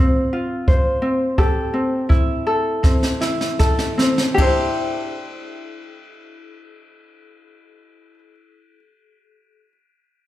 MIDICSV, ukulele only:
0, 0, Header, 1, 2, 480
1, 0, Start_track
1, 0, Key_signature, 0, "major"
1, 0, Tempo, 705882
1, 939, Time_signature, 4, 2, 24, 8
1, 1428, Tempo, 748130
1, 2388, Tempo, 794702
1, 6419, End_track
2, 0, Start_track
2, 0, Title_t, "Ukulele"
2, 0, Program_c, 0, 24
2, 0, Note_on_c, 0, 60, 56
2, 0, Note_on_c, 0, 65, 53
2, 0, Note_on_c, 0, 72, 58
2, 215, Note_off_c, 0, 65, 0
2, 223, Note_on_c, 0, 65, 48
2, 458, Note_off_c, 0, 72, 0
2, 461, Note_on_c, 0, 72, 55
2, 690, Note_off_c, 0, 60, 0
2, 693, Note_on_c, 0, 60, 51
2, 938, Note_off_c, 0, 65, 0
2, 939, Note_on_c, 0, 69, 62
2, 940, Note_on_c, 0, 67, 65
2, 1177, Note_off_c, 0, 60, 0
2, 1180, Note_on_c, 0, 60, 50
2, 1419, Note_off_c, 0, 67, 0
2, 1422, Note_on_c, 0, 64, 51
2, 1655, Note_off_c, 0, 69, 0
2, 1663, Note_on_c, 0, 69, 53
2, 1894, Note_off_c, 0, 60, 0
2, 1896, Note_on_c, 0, 60, 52
2, 2136, Note_off_c, 0, 64, 0
2, 2139, Note_on_c, 0, 64, 47
2, 2378, Note_off_c, 0, 69, 0
2, 2386, Note_on_c, 0, 69, 52
2, 2615, Note_off_c, 0, 60, 0
2, 2617, Note_on_c, 0, 60, 46
2, 2739, Note_off_c, 0, 72, 0
2, 2837, Note_off_c, 0, 69, 0
2, 2840, Note_on_c, 0, 67, 64
2, 2856, Note_off_c, 0, 60, 0
2, 2858, Note_on_c, 0, 62, 64
2, 2869, Note_off_c, 0, 64, 0
2, 2871, Note_on_c, 0, 64, 69
2, 2884, Note_on_c, 0, 72, 66
2, 5114, Note_off_c, 0, 67, 0
2, 5133, Note_off_c, 0, 62, 0
2, 5146, Note_off_c, 0, 64, 0
2, 5159, Note_off_c, 0, 72, 0
2, 6419, End_track
0, 0, End_of_file